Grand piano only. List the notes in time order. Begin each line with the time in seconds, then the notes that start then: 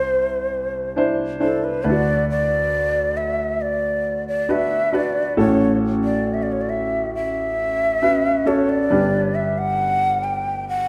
Already playing: C2 C3 D4 E4 C5
0.96 D4 E4 C5
1.40 D4 E4 C5
1.84 D2 D3 D4 E4 B4
1.90 F#4
4.49 D4 F#4 B4
4.92 D4 F#4 B4
5.37 A1 A2 C#4 F#4 A4
8.02 C#4 F#4 B4
8.45 C#4 F#4 A4
8.90 G1 G2 D4 G4 B4